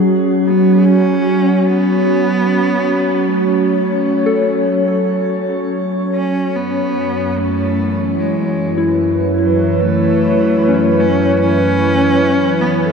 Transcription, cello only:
\new Staff \with { instrumentName = "Cello" } { \time 4/4 \key fis \minor \tempo 4 = 74 r8 b8 cis'4 b2 | a2. r8 cis'8 | b4 a4 gis4 r8 fis8 | a4. cis'8 cis'4. b8 | }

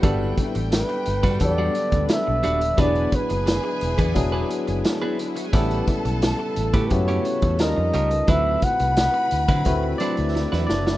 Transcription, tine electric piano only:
\new Staff \with { instrumentName = "Tine electric piano" } { \time 4/4 \key g \major \tempo 4 = 87 << { r1 | r1 | r1 | r2 r8 <d' d''>4 <d' d''>8 | } \\ { <g b d' a'>4. r8 <fis g b d' a'>4. r8 | <fis b d' e' g' gis'>4. r8 <fis b d' e' gis'>4. r8 | <g b cis' e' a'>4. r8 <b cis' e' fis' g'>4 <g des' ees' f' bes'>4 | <a c' e' fis' b'>4. r8 <a c' e' fis' b'>4. r8 | } >> }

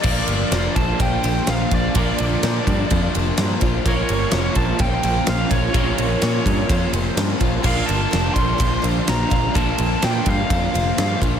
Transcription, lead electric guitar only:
\new Staff \with { instrumentName = "Lead electric guitar" } { \time 4/4 \key bes \lydian \tempo 4 = 126 d''4. a''8 g''4 f''8 d''8~ | d''2~ d''8 r4. | des''4. a''8 g''4 f''8 des''8~ | des''2~ des''8 r4. |
f''8 a''4 c'''4 r8 bes''4 | a''4 g''8 f''2 r8 | }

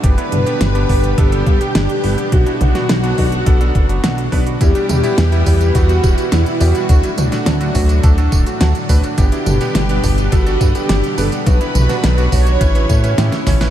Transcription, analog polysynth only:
\new Staff \with { instrumentName = "Analog polysynth" } { \time 4/4 \key g \lydian \tempo 4 = 105 b'2 g'2 | fis'8 fis'2. r8 | g'2 fis'4 e'8 fis'8~ | fis'4 r2. |
g'2 fis'8. g'8. a'8 | b'4. cis''2 r8 | }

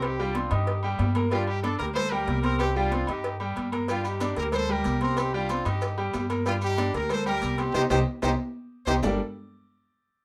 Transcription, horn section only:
\new Staff \with { instrumentName = "Horn section" } { \time 4/4 \key g \minor \tempo 4 = 187 <ees' g'>8 <d' f'>4 <ees' g'>4 r4. | <d' f'>8 <ees' g'>8 <d' a'>8 <g' bes'>8 <a' c''>8 <g' bes'>4 <g' bes'>8 | <ees' g'>8 <d' f'>4 <ees' g'>4 r4. | <d' f'>8 <ees' g'>4 <g' bes'>8 <a' c''>8 <g' bes'>4 <g' bes'>8 |
<ees' g'>8 <d' f'>4 <ees' g'>4 r4. | <d' f'>8 <ees' g'>4 <g' bes'>8 <a' c''>8 <g' bes'>4 <ees' g'>8 | <ees' g' c''>8 <ees' g' c''>8 r8 <ees' g' c''>8 r4. <ees' g' c''>8 | r1 | }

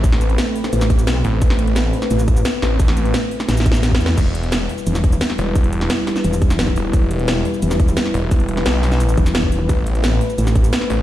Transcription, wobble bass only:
\new Staff \with { instrumentName = "Wobble bass" } { \clef bass \time 4/4 \key e \minor \tempo 4 = 174 r2 a,,4 b,,8 r8 | r2 a,,4 r4 | r2 a,,4 a,,8 e,8 | r2 e,,4 r4 |
r2 e,,4 f,,8 r8 | r2 e,,4 r4 | r2 r8 e,,4. | r2 a,,4 r4 | }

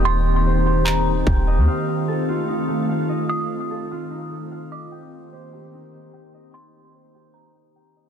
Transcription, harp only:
\new Staff \with { instrumentName = "Harp" } { \time 4/4 \key ees \lydian \tempo 4 = 148 <c' ees' g' ees'' g''>4 c''8 g'8 ees'8 c'8 g''8 ees''8 | f''4 a'8 f'8 ees'8 a8 f''8 ees''8 | f''4 a'8 f'8 ees'8 a8 f''8 ees''8 | g''4 c''8 g'8 ees'8 c'8 g''8 ees''8 |
g''4 c''8 g'8 ees'8 c'8 g''8 ees''8 | }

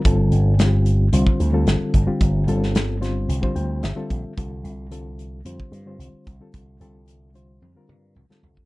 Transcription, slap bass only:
\new Staff \with { instrumentName = "Slap bass" } { \clef bass \time 4/4 \key c \mixolydian \tempo 4 = 111 g,,8 g,,4. c,16 r16 d,8 g,,16 r16 g,,16 r16 | g,,8 g,,4. c,16 r16 d,8 g,,16 r16 bes,,16 r16 | c,8 c,4. f,16 r16 g,8 c,16 r16 c,16 r16 | c,8 c,4. f,16 r16 g,8 c,16 r16 c,16 r16 | }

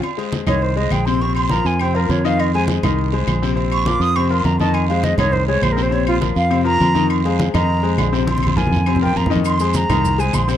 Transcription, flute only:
\new Staff \with { instrumentName = "Flute" } { \time 4/4 \key bes \dorian \tempo 4 = 204 r4. des''8 c''8 ees''8 g''8 c'''8 | des'''8 c'''8 bes''8 aes''8 g''8 bes'8 des''8 f''8 | ees''8 aes''8 r2. | r8 des'''8 d'''8 ees'''8 des'''8 c'''8 bes''8 a''8 |
aes''8 f''8 ees''8 des''8 c''8 des''8 \tuplet 3/2 { c''8 bes'8 c''8 } | des''8 f'8 r8 f''4 bes''4. | r8 f''4 bes''4. r4 | c'''4 aes''4. g''8 bes''8 r8 |
c'''4 bes''4. aes''8 c'''8 r8 | }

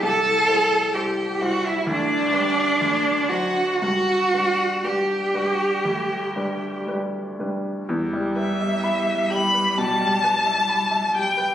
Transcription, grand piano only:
\new Staff \with { instrumentName = "Grand piano" } { \time 4/4 \key g \major \tempo 4 = 64 c,8 <g e' c''>8 <g e' c''>8 <g e' c''>8 d,8 <g d' b'>8 d,8 <fis d' c''>8 | g,8 <g d' b'>8 <g d' b'>8 <g d' b'>8 d,8 <g d' b'>8 <g d' b'>8 <g d' b'>8 | \key e \minor e,16 g16 b'16 e''16 b''16 e''16 g'16 b'16 b,16 g16 b'16 e''16 b''16 e''16 g'16 b'16 | }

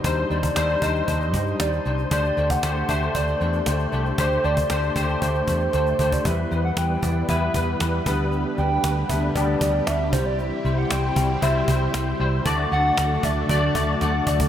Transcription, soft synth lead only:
\new Staff \with { instrumentName = "Soft synth lead" } { \time 4/4 \key d \mixolydian \tempo 4 = 116 c''8 d''8 d''8 ees''8 ees''4 d''8. r16 | d''8. fis''8. e''8 d''4. r8 | c''8 d''8 d''4 c''4. c''16 d''16 | e''8. fis''16 g''4 e''4. r8 |
r8 g''4 e''8 d''8 d''8 e''8 c''16 d''16 | e''8. fis''16 g''4 e''4. r8 | r8 fis''4 e''8 d''8 e''8 fis''8 d''8 | }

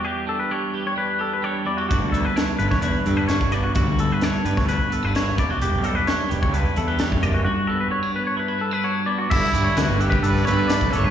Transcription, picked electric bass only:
\new Staff \with { instrumentName = "Picked electric bass" } { \clef bass \time 4/4 \key g \lydian \tempo 4 = 130 r1 | g,,16 d,8 r8. g,,16 e,8 r16 g,8. g,,8. | d,16 d,8 r8. g,16 d,8 r8 g,,8. e,,16 r16 | e,,16 b,,8 r8. e,,16 cis,8 r16 e,8. fis,,8. |
r1 | g,,16 r16 g,16 r16 d,16 g,,8 r16 g,8 g,8. b,,16 g,,16 g,16 | }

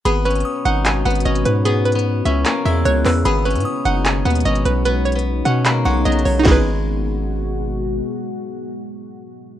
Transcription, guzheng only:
\new Staff \with { instrumentName = "Guzheng" } { \time 4/4 \key gis \minor \tempo 4 = 150 b8 cis'8 r8 dis'4 b8 cis'8 r8 | b8. b8. cis'8 ais8 gis4. | b8 cis'8 r8 dis'4 b8 cis'8 r8 | b8. b8. cis'8 ais8 gis8 fis8 r8 |
gis2. r4 | r1 | }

